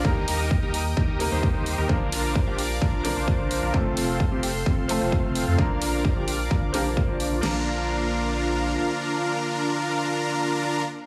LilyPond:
<<
  \new Staff \with { instrumentName = "Analog synth pad" } { \time 4/4 \key bes \major \tempo 4 = 130 << { <bes' ees'' ees'''>1 | <bes' d'' d'''>1 | <a' c'' c'''>1 | <bes' d'' d'''>1 |
<bes d' f' d'' f''>1~ | <bes d' f' d'' f''>1 | } \\ { g''1 | f''1~ | f''1~ | f''1 |
r1 | r1 | } >> }
  \new Staff \with { instrumentName = "Supersaw synth" } { \time 4/4 \key bes \major <ees' g' bes'>8 <ees' g' bes'>8 r16 <ees' g' bes'>16 r8 <ees' g' bes'>8 r16 <ees' g' c''>4 <ees' g' bes'>16 | <d' f' bes'>8 <d' f' bes'>8 r16 <d' f' g'>16 r8 <d' f' bes'>8 r16 <d' f' c''>4 <d' f' bes'>16 | <c' f' a'>8 <c' f' a'>8 r16 <c' f' g'>16 r8 <c' f' a'>8 r16 <c' f' c''>4 <c' f' a'>16 | <d' f' bes'>8 <d' f' bes'>8 r16 <d' f' g'>16 r8 <d' f' bes'>8 <d' f' g'>16 r8 <d' f' d''>8. |
<d' f' bes'>1~ | <d' f' bes'>1 | }
  \new Staff \with { instrumentName = "Grand piano" } { \time 4/4 \key bes \major <g bes ees' bes'>2~ <g bes ees' bes'>8 <g bes ees' bes'>4. | <f bes d' bes'>2~ <f bes d' bes'>8 <f bes d' bes'>4. | <f a c' a'>2~ <f a c' a'>8 <f a c' a'>4. | <f bes d' bes'>2~ <f bes d' bes'>8 <f bes d' bes'>4. |
<f bes d' bes'>1~ | <f bes d' bes'>1 | }
  \new Staff \with { instrumentName = "Sub bass" } { \clef bass \time 4/4 \key bes \major ees,8 ees,8. ees,8. ees,8. ees,4 ees,16 | bes,,8 bes,,8. bes,,8. bes,,8. bes,,4 bes,,16 | f,,8 f,,8. f,,8. f,,8. f,,4 f,16 | bes,,8 bes,,8. bes,,8. bes,,8 bes,,8. bes,,8. |
bes,,2. r4 | r1 | }
  \new DrumStaff \with { instrumentName = "Drums" } \drummode { \time 4/4 bd8 hho8 bd8 hho8 bd8 hho8 bd8 hho8 | bd8 hho8 bd8 hho8 bd8 hho8 bd8 hho8 | bd8 hho8 bd8 hho8 bd8 hho8 bd8 hho8 | bd8 hho8 bd8 hho8 bd8 hho8 bd8 hho8 |
<cymc sn>4 r4 r4 r4 | r4 r4 r4 r4 | }
>>